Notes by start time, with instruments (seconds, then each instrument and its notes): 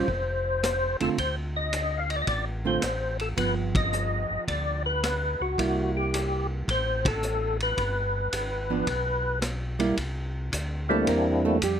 Already playing: tonewheel organ C5
0.08 tonewheel organ F1, kick
0.63 cross-stick, hi-hat pedal, ride
1.00 tonewheel organ F1 A4, hollow-body jazz guitar D3 A3 C4 F4, ride
1.18 tonewheel organ D2 C5, kick, ride
1.56 tonewheel organ D#5
1.73 hi-hat pedal, ride
1.97 tonewheel organ F5
2.10 tonewheel organ D#5, ride
2.16 tonewheel organ D5
2.22 tonewheel organ D#5
2.27 tonewheel organ A1 D5, kick, ride
2.65 hollow-body jazz guitar D3 A3 C4 F4, tonewheel organ C5
2.82 tonewheel organ A1, cross-stick, hi-hat pedal, ride
3.19 tonewheel organ A4, ride
3.37 tonewheel organ G1 B4, hollow-body jazz guitar F3 B3, kick, ride
3.75 tonewheel organ D#5, kick, ride
3.93 hi-hat pedal
4.30 tonewheel organ G1
4.48 tonewheel organ D2 D5, kick, ride
4.86 tonewheel organ B4
5.03 cross-stick, hi-hat pedal, ride
5.40 tonewheel organ C#2 F#4
5.58 tonewheel organ C2, hollow-body jazz guitar G3 A#3 E4, kick, ride
5.97 tonewheel organ G4
6.14 hi-hat pedal, ride
6.68 tonewheel organ A1 C5, kick, ride
7.05 tonewheel organ A4, kick, ride
7.23 hi-hat pedal
7.60 tonewheel organ B4, ride
7.77 tonewheel organ G1, kick, ride
8.32 tonewheel organ G#1, hi-hat pedal, ride
8.70 hollow-body jazz guitar F3 B3 D4
8.87 tonewheel organ B1, kick, ride
9.42 cross-stick, hi-hat pedal, ride
9.79 hollow-body jazz guitar G3 A#3 E4, ride
9.97 tonewheel organ C2, kick, ride
10.52 tonewheel organ D2, kick, hi-hat pedal, ride
10.89 tonewheel organ G3 A#3 C4 D4 E4, hollow-body jazz guitar A3 A4
11.07 tonewheel organ E2, hollow-body jazz guitar A#3 A#4, kick, ride
11.45 hollow-body jazz guitar A3 A4
11.62 tonewheel organ F2, hollow-body jazz guitar G3 G4, kick, hi-hat pedal, ride